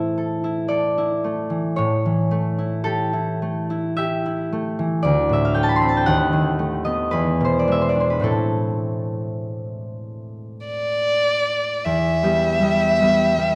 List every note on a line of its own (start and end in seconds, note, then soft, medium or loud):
0.00 1.77 A2 soft
0.00 1.49 E3 soft
0.00 1.23 A3 soft
0.00 0.43 E4 soft
0.00 0.16 A4 soft
0.00 1.80 C5 soft
0.00 3.52 E5 medium
0.18 0.68 A4 soft
0.44 0.97 E4 soft
0.68 2.83 A4 soft
0.68 2.52 D5 soft
0.98 2.57 E4 soft
1.24 2.30 A3 soft
1.50 1.81 E3 soft
1.76 5.08 A2 soft
1.76 5.07 C#5 medium
2.06 4.78 E3 soft
2.31 3.41 A3 soft
2.58 3.12 E4 soft
2.84 3.97 G4 soft
2.84 6.74 A4 medium
3.13 3.69 E4 soft
3.42 4.51 A3 soft
3.70 4.25 E4 soft
3.97 5.07 G4 soft
3.97 5.07 E5 medium
4.26 5.08 E4 soft
4.52 5.55 A3 soft
4.79 5.08 E3 soft
5.03 6.11 D2 soft
5.03 6.10 D5 medium
5.29 6.10 A2 soft
5.29 5.53 E5 soft
5.45 5.61 F5 medium
5.54 6.58 A3 soft
5.54 5.67 G5 medium
5.63 5.73 A5 soft
5.69 5.79 B5 soft
5.76 5.86 C6 medium
5.81 6.11 C4 soft
5.81 5.94 B5 soft
5.89 6.03 A5 medium
5.97 6.12 G5 soft
6.06 7.16 D#2 soft
6.06 7.16 F#5 medium
6.33 7.16 D#3 soft
6.59 7.16 A3 soft
6.85 8.29 B3 soft
6.85 7.30 D#5 medium
7.11 8.29 E2 soft
7.11 8.09 B4 medium
7.41 8.30 B2 soft
7.45 7.71 C5 medium
7.59 7.80 D5 soft
7.68 8.29 G#3 soft
7.68 7.88 E5 soft
7.81 7.96 C5 soft
7.89 8.06 D5 soft
7.95 8.29 D4 soft
8.00 8.19 C5 soft
8.10 8.32 B4 soft
8.20 11.88 A2 soft
8.20 11.89 A3 soft
8.20 11.90 C4 soft
8.20 12.13 E4 soft
8.20 11.90 A4 soft
10.66 11.86 D5 medium
11.84 13.55 E2 soft
11.84 13.55 E5 medium
12.23 12.60 G3 soft
12.23 12.61 B3 soft
12.23 12.61 G4 soft
12.60 13.00 G3 soft
12.60 13.00 B3 soft
12.65 13.01 G4 soft
13.01 13.36 G3 soft
13.01 13.37 B3 soft
13.01 13.38 G4 soft
13.38 13.55 G3 soft
13.38 13.55 B3 soft
13.38 13.55 G4 soft